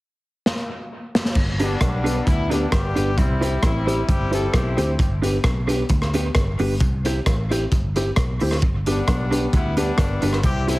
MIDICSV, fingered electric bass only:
0, 0, Header, 1, 2, 480
1, 0, Start_track
1, 0, Key_signature, 1, "major"
1, 0, Tempo, 453858
1, 1437, Time_signature, 4, 2, 24, 8
1, 11413, End_track
2, 0, Start_track
2, 0, Title_t, "Fingered electric bass"
2, 0, Program_c, 0, 33
2, 1434, Note_on_c, 0, 31, 96
2, 1844, Note_off_c, 0, 31, 0
2, 1917, Note_on_c, 0, 35, 92
2, 2326, Note_off_c, 0, 35, 0
2, 2400, Note_on_c, 0, 38, 87
2, 2807, Note_off_c, 0, 38, 0
2, 2880, Note_on_c, 0, 31, 89
2, 3100, Note_off_c, 0, 31, 0
2, 3145, Note_on_c, 0, 31, 85
2, 3330, Note_off_c, 0, 31, 0
2, 3361, Note_on_c, 0, 36, 105
2, 3768, Note_off_c, 0, 36, 0
2, 3839, Note_on_c, 0, 33, 92
2, 4247, Note_off_c, 0, 33, 0
2, 4318, Note_on_c, 0, 31, 100
2, 4726, Note_off_c, 0, 31, 0
2, 4798, Note_on_c, 0, 35, 93
2, 5018, Note_off_c, 0, 35, 0
2, 5049, Note_on_c, 0, 38, 90
2, 5241, Note_off_c, 0, 38, 0
2, 5277, Note_on_c, 0, 31, 102
2, 5686, Note_off_c, 0, 31, 0
2, 5753, Note_on_c, 0, 35, 90
2, 6163, Note_off_c, 0, 35, 0
2, 6240, Note_on_c, 0, 38, 93
2, 6647, Note_off_c, 0, 38, 0
2, 6717, Note_on_c, 0, 31, 89
2, 6937, Note_off_c, 0, 31, 0
2, 6979, Note_on_c, 0, 31, 87
2, 7166, Note_off_c, 0, 31, 0
2, 7195, Note_on_c, 0, 36, 111
2, 7604, Note_off_c, 0, 36, 0
2, 7682, Note_on_c, 0, 33, 90
2, 8088, Note_off_c, 0, 33, 0
2, 8161, Note_on_c, 0, 31, 93
2, 8567, Note_off_c, 0, 31, 0
2, 8637, Note_on_c, 0, 35, 92
2, 8857, Note_off_c, 0, 35, 0
2, 8901, Note_on_c, 0, 38, 90
2, 9086, Note_off_c, 0, 38, 0
2, 9117, Note_on_c, 0, 31, 103
2, 9525, Note_off_c, 0, 31, 0
2, 9601, Note_on_c, 0, 35, 85
2, 10007, Note_off_c, 0, 35, 0
2, 10078, Note_on_c, 0, 38, 88
2, 10485, Note_off_c, 0, 38, 0
2, 10556, Note_on_c, 0, 31, 92
2, 10776, Note_off_c, 0, 31, 0
2, 10819, Note_on_c, 0, 31, 90
2, 11005, Note_off_c, 0, 31, 0
2, 11042, Note_on_c, 0, 36, 103
2, 11413, Note_off_c, 0, 36, 0
2, 11413, End_track
0, 0, End_of_file